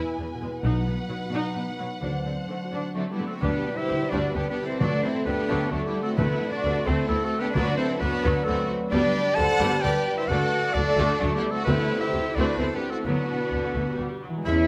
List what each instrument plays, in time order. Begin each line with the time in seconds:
Already playing: harp E2 B2 G#3 B3 G#4, viola section E4, violin section B4 G#5
0.03 harp E4
0.18 cello section E2, viola section B3, harp B3
0.35 harp B2
0.42 cello section E2, viola section G#3
0.50 harp B3
0.63 double bass section B1, cello section B2, harp B2, viola section D#4, violin section B4 F#5
0.80 harp F#3
0.87 cello section B2, viola section B3
0.94 harp B3
1.09 cello section B2, viola section F#3, harp D#4
1.25 harp F#4
1.31 cello section B2, viola section D#4
1.41 harp D#4
1.54 cello section B2, harp B3, viola section B3
1.70 harp F#3
1.79 cello section B2, viola section F#3
1.87 harp B3
2.02 double bass section D2, harp D3, cello section D3, viola section D4, violin section C5
2.18 harp A3
2.25 cello section D3, viola section C4
2.33 harp C4
2.48 cello section D3, viola section A3, harp D4
2.64 harp F#4
2.73 cello section D3, viola section D4
2.80 harp D4
2.94 cello section D3 F#3, violin section A3 D4, harp C4, viola section C4, clarinet F#4
3.11 cello section G3, harp A3, violin section B3 E4, clarinet G4
3.18 cello section D3, viola section A3
3.27 cello section A3, harp C4, violin section C4 F#4, clarinet A4
3.41 double bass section D2, timpani D3, harp D3, viola section G3 D4, french horn section G3 G4, cello section B3, violin section D4 G4, clarinet B4
3.55 harp B2
3.67 harp D4
3.76 cello section E4, violin section G4 C5, harp G4, clarinet E5
3.88 double bass section D2, viola section D3 G3, harp B4
4.01 harp D5
4.10 double bass section D2, viola section G3 D4, cello section D4, violin section F#4 B4, clarinet D5, harp G5
4.23 harp B5
4.33 double bass section D2, viola section D3 B3, cello section B3, violin section D4 G4, clarinet B4, harp G5
4.47 cello section B3, violin section D4, clarinet B4, harp D5
4.51 violin section G4
4.58 harp B4
4.64 cello section C4, violin section E4 A4, clarinet C5
4.70 harp G4
4.80 double bass section D2, timpani D3, harp D3, viola section F#3 D4, french horn section A3 A4, cello section D4, violin section F#4 A4, clarinet D5
4.93 harp A3
5.03 cello section C4, harp D4, violin section E4 A4, clarinet C5
5.26 double bass section D2, viola section D3 F#3, cello section B3, violin section D4 G4, harp A4, clarinet B4
5.38 harp D5
5.48 double bass section D2, viola section F#3 D4, harp F#5
5.62 harp A5
5.71 double bass section D2, viola section D3 A3, cello section F#3, violin section A3 D4, clarinet F#4, harp F#5
5.85 violin section B3 E4, clarinet G4, harp D5
5.89 cello section G3
5.96 harp A4
6.02 cello section A3, violin section C4 F#4, clarinet A4
6.07 harp F#4
6.16 double bass section D2, timpani D3, harp D3, viola section A3 C4, french horn section A3 A4, cello section B3, violin section E4, clarinet B4
6.29 harp A3
6.42 harp C4
6.51 cello section D4, violin section F#4 B4, harp A4, clarinet D5
6.64 double bass section D2, viola section C3 A3, harp C4
6.76 harp C5
6.86 double bass section D2, viola section A3 C4, cello section C4, violin section E4 A4, clarinet C5, harp A5
6.98 harp C5
7.08 double bass section D2, viola section E3 B3, cello section A3, violin section C4 E4, clarinet A4, harp A5
7.22 cello section A3, violin section C4 F#4, clarinet A4, harp C5
7.34 harp A4
7.40 cello section B3, violin section D4 G4, clarinet B4
7.45 harp C4
7.54 double bass section D2, timpani D3, harp D3, french horn section F#3 B4, viola section F#3 B3, cello section D4, violin section F#4 B4, clarinet D5
7.67 harp F#3
7.77 cello section C4, harp D4, violin section E4 A4, clarinet C5
8.00 double bass section D2, viola section D3, cello section B3, violin section D4 F#4, harp F#4, clarinet B4
8.14 harp D5
8.23 double bass section D2, viola section F#3 B3, harp B5
8.37 harp F#5
8.44 double bass section D2, viola section D3 F#3, cello section A3, violin section C4 F#4, clarinet A4, harp B5
8.60 harp D5
8.71 harp F#4
8.91 double bass section D2, harp D3, viola section G3 B3, french horn section G3 D5, cello section D4, violin section G4 B4, clarinet D5
9.06 harp G3
9.16 harp D4
9.35 double bass section D2, viola section D3, cello section A4, violin section C5, clarinet A5
9.40 harp G4, violin section F#5
9.52 harp D5
9.60 double bass section D2, viola section G3 B3, harp B5
9.74 harp G5
9.81 double bass section D2, viola section D3 G3, cello section G4, violin section B4 D5, french horn section B4, clarinet G5
9.86 french horn section G3
9.96 harp D5
10.08 harp G4
10.17 cello section E4, violin section G4 C5, harp B4, clarinet E5
10.28 double bass section D2, harp D3, french horn section A3 A4, viola section A3 D4, cello section F#4, violin section A4 D5, clarinet F#5
10.41 harp A3
10.53 harp D4
10.64 harp A4
10.74 double bass section D2, viola section D3 F#3, french horn section A3 A4, cello section D4, harp D4, violin section F#4 A4, clarinet D5
10.87 harp D5
10.97 double bass section D2, viola section A3 D4
11.20 double bass section D2, cello section F#3, viola section F#3 A3, violin section A3 D4, french horn section A3 A4, clarinet F#4, harp A5
11.32 violin section B3, clarinet G4, harp D5
11.37 cello section G3, violin section E4
11.44 harp A4
11.51 cello section A3, violin section C4 F#4, clarinet A4
11.56 harp D4
11.65 double bass section D2, french horn section C3 A4, harp D3, timpani D3, viola section A3 C4, cello section B3, violin section E4, clarinet B4
11.79 harp A3
11.92 harp C4
12.00 cello section E4, harp E4, violin section G4 C5, clarinet E5
12.13 double bass section D2, viola section C3 A3, harp A4
12.36 double bass section D2, viola section A3 C4, cello section D4, violin section F#4 B4, clarinet D5, harp E5
12.49 harp A5
12.58 double bass section D2, viola section E3 B3, french horn section C4 A4, cello section C4, violin section E4 A4, clarinet C5
12.73 cello section B3, violin section D4 G4, clarinet B4, harp C5
12.85 harp A4
12.90 cello section A3, violin section C4 F#4, clarinet A4
12.96 harp E4
13.05 double bass section D2, harp D3, viola section F#3 B3, french horn section B3 F#4, cello section B3, violin section D4 F#4, clarinet B4
13.19 harp D4
13.31 harp B2
13.43 harp F#4
13.52 double bass section D2, viola section D3
13.67 harp F#4
13.76 double bass section D2, harp F#5
13.89 viola section G3, harp B5
13.99 double bass section D2, harp F#5
14.22 viola section F#3, harp F#4
14.29 harp E3
14.37 harp G#3 G#4
14.44 double bass section E2, viola section G#3 G#4, cello section C#4, french horn section E4, oboe E4, violin section E4 E5 B5, flute E5